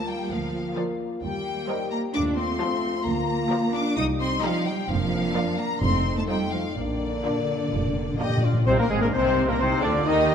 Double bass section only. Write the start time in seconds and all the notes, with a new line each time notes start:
0.31 D2
1.23 D#2
2.14 D#2
3.05 D2
3.97 C2
4.89 F1
5.82 F1
6.76 A#1
7.72 F1
8.67 C2
8.90 G#1
9.13 C2
9.60 C2
9.83 D2
10.06 D#2